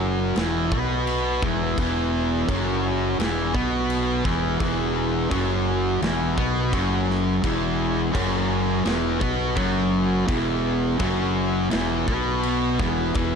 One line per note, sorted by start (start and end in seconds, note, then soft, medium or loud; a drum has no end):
0.00 0.32 F#1 loud
0.00 0.35 F#2 medium
0.00 0.36 F#3 medium
0.36 0.69 E1 loud
0.36 0.71 E2 medium
0.36 0.71 E3 loud
0.36 snare loud
0.36 crash soft
0.72 1.39 B1 medium
0.72 1.42 B2 medium
0.72 1.42 B3 medium
0.72 kick loud
1.07 crash medium
1.42 1.75 E1 medium
1.42 1.77 E2 medium
1.42 1.77 E3 loud
1.42 kick loud
1.78 2.45 E1 medium
1.78 2.48 E2 medium
1.78 2.48 E3 loud
1.78 kick loud
1.78 crash medium
2.49 3.15 F#1 loud
2.49 3.18 F#2 medium
2.49 3.19 F#3 medium
2.49 kick loud
2.49 crash medium
3.19 3.52 E1 medium
3.19 3.53 E2 medium
3.19 3.54 E3 loud
3.19 snare loud
3.19 crash medium
3.54 4.21 B1 loud
3.54 4.24 B2 medium
3.54 4.24 B3 medium
3.54 kick loud
3.90 crash medium
4.25 4.58 E1 medium
4.25 4.59 E2 medium
4.25 4.60 E3 loud
4.25 kick loud
4.25 snare soft
4.60 5.27 E1 loud
4.60 5.30 E2 loud
4.60 5.31 E3 loud
4.60 kick loud
4.60 crash medium
5.30 5.98 F#1 loud
5.30 6.01 F#2 medium
5.30 6.01 F#3 medium
5.30 kick loud
5.30 crash medium
6.02 6.35 E1 loud
6.02 6.36 E2 medium
6.02 6.37 E3 loud
6.02 snare loud
6.02 crash medium
6.37 6.71 B1 medium
6.37 6.72 B2 medium
6.37 6.72 B3 loud
6.37 kick loud
6.72 7.40 F#1 medium
6.72 7.43 F#2 medium
6.72 7.43 F#3 loud
6.72 kick loud
6.72 crash medium
7.11 snare soft
7.43 8.11 E1 medium
7.43 8.14 E2 loud
7.43 8.14 E3 loud
7.43 kick medium
7.43 crash medium
8.14 8.82 F#1 loud
8.14 8.85 F#2 medium
8.14 8.85 F#3 medium
8.14 kick loud
8.14 crash medium
8.85 9.19 E1 medium
8.85 9.20 E2 medium
8.85 9.20 E3 loud
8.85 snare loud
8.85 crash medium
9.19 9.55 B1 medium
9.19 9.55 B2 medium
9.19 9.56 B3 medium
9.19 kick loud
9.56 10.25 F#1 loud
9.56 10.26 F#2 loud
9.56 10.27 F#3 loud
9.56 kick loud
9.56 crash soft
10.27 10.96 E1 medium
10.27 10.98 E2 loud
10.27 10.99 E3 medium
10.27 kick loud
10.27 crash medium
10.99 11.68 F#1 loud
10.99 11.70 F#2 medium
10.99 11.70 F#3 medium
10.99 kick loud
10.99 crash medium
11.71 12.06 E1 loud
11.71 12.06 E2 loud
11.71 12.06 E3 loud
11.71 snare loud
11.71 crash medium
12.07 12.76 B1 medium
12.07 12.78 B2 medium
12.07 12.79 B3 medium
12.07 kick loud
12.43 crash medium
12.79 13.13 E1 medium
12.79 13.14 E2 medium
12.79 13.15 E3 loud
12.79 kick loud
12.79 snare soft
13.14 13.35 E1 medium
13.14 13.35 E2 medium
13.14 13.35 E3 loud
13.14 kick loud
13.14 crash medium